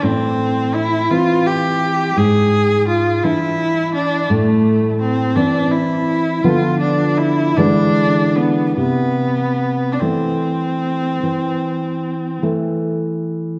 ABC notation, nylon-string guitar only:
X:1
M:12/8
L:1/8
Q:3/8=55
K:Am
V:1 name="Nylon-string guitar" clef=bass
A,,3 [E,C]3 ^G,,3 [E,D]3 | A,,3 [E,C]3 [D,F,B,]3 [D,E,^G,]3 | C,3 [E,A,]3 E,3 [E,A,]3 |]